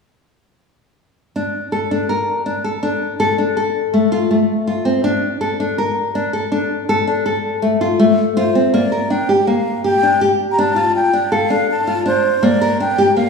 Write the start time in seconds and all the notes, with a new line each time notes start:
1.36 D4
1.72 A4
1.91 D4
2.09 A#4
2.46 D4
2.64 A4
2.83 D4
3.20 A4
3.38 D4
3.57 A4
3.94 A3
4.12 F4
4.31 A3
4.67 F4
4.85 C4
5.04 D4
5.41 A4
5.60 D4
5.78 A#4
6.15 D4
6.33 A4
6.52 D4
6.89 A4
7.07 D4
7.26 A4
7.62 A3
7.81 F4
7.99 A3
8.36 F4 C5
8.55 C4
8.73 A#3 D5
8.92 A#4
9.10 D4 G5
9.29 G4
9.47 A#3 F5
9.84 G4 G5
10.03 D4
10.21 G4
10.52 A#5
10.58 D4 A5
10.76 F4
10.96 G5
11.13 D4
11.32 A4 F5
11.50 D4
11.71 A5
11.87 F4
12.06 D4 C5
12.43 A#3 D5
12.61 A#4
12.80 D4 G5
12.98 G4
13.16 A#3 F5